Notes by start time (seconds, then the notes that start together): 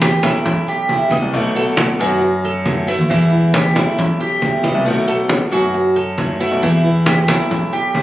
Already playing: E2 G3 B3 E4
0.01 G4, high conga
0.23 B1 E3 G3 B3 E4, high conga
0.46 muted steel-string acoustic guitar stroke, high conga, low conga
0.67 G4, high conga
0.89 E3 G3 B3 E4, high conga
1.11 E3 G3 B3 E4 D#5, high conga
1.22 C2
1.33 B1 B2 D#3 A3 B3 F#4, high conga
1.55 A3 B3 F#4 A4, high conga
1.77 high conga
1.99 F#2 D#3 A3 B3 F#4, high conga
2.21 muted steel-string acoustic guitar stroke, high conga
2.44 A4, high conga
2.65 D#3 A3 B3 F#4, high conga
2.87 D#3 A3 B3 E4 F#4, high conga
2.99 D#2
3.10 E2 B2 E3 G3 B3 E4, high conga
3.31 G3 B3 E4, high conga
3.54 G4, high conga
3.75 B1 E3 G3 B3 E4, high conga
3.98 muted steel-string acoustic guitar stroke, high conga, low conga
4.20 G4, high conga
4.41 E3 G3 B3 E4, high conga
4.63 E3 G3 B3 E4 D#5, high conga
4.74 C2
4.85 B1 B2 D#3 A3 B3 F#4, high conga
5.07 A3 B3 F#4 A4, high conga
5.29 high conga
5.51 F#2 D#3 A3 B3 F#4, high conga
5.74 muted steel-string acoustic guitar stroke, high conga
5.96 A4, high conga
6.17 D#3 A3 B3 F#4, high conga
6.40 D#3 A3 B3 E4 F#4, high conga
6.51 B1
6.62 E2 B2 E3 G3 B3 E4, high conga
6.84 G3 B3 E4, high conga
7.06 G4, high conga
7.28 B1 E3 G3 B3 E4, high conga
7.51 muted steel-string acoustic guitar stroke, high conga, low conga
7.73 G4, high conga
7.94 E3 G3 B3 E4, high conga